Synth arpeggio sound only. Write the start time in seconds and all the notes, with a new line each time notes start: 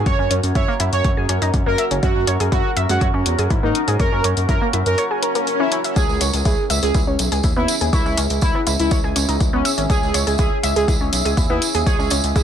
0.06 C#5 C#6
0.19 C#4 C#5
0.31 C#4 C#5
0.55 E4 E5
0.68 A#3 A#4
0.80 E4 E5
1.04 C#5 C#6
1.17 G#4 G#5
1.29 C#4 C#5
1.42 D#4 D#5
1.66 A#3 A#4
1.78 E5 E6
1.91 C#4 C#5
2.03 C#4 C#5
2.27 C#5 C#6
2.40 G#4 G#5
2.52 E4 E5
2.76 E5 E6
2.89 G#3 G#4
3.01 C#5 C#6
3.14 C#4 C#5
3.38 G#4 G#5
3.50 E4 E5
3.63 A#3 A#4
3.88 G#4 G#5
3.99 C#5 C#6
4.12 C#4 C#5
4.24 C#4 C#5
4.49 E4 E5
4.61 A#3 A#4
4.73 E4 E5
4.98 C#5 C#6
5.11 G#4 G#5
5.23 A#4 A#5
5.35 A#3 A#4
5.60 C#4 C#5
5.72 C#4 C#5
5.84 E5 E6
5.96 C#4 C#5
6.21 C#5 C#6
6.34 G#4 G#5
6.45 E4 E5
6.70 E5 E6
6.83 G#3 G#4
6.94 E4 E5
7.07 C#4 C#5
7.32 G#4 G#5
7.44 E4 E5
7.57 B3 B4
7.81 G#4 G#5
7.93 C#5 C#6
8.06 C#4 C#5
8.18 C#4 C#5
8.42 E4 E5
8.55 B3 B4
8.67 E4 E5
8.91 C#5 C#6
9.04 G#4 G#5
9.16 C#4 C#5
9.29 D#4 D#5
9.53 B3 B4
9.65 E5 E6
9.78 C#4 C#5
9.90 C#4 C#5
10.14 C#5 C#6
10.27 G#4 G#5
10.39 E4 E5
10.63 E5 E6
10.76 G#3 G#4
10.88 E4 E5
11.01 C#4 C#5
11.25 G#4 G#5
11.37 E4 E5
11.50 B3 B4
11.75 G#4 G#5
11.86 C#5 C#6
11.99 C#4 C#5
12.11 C#4 C#5
12.36 E4 E5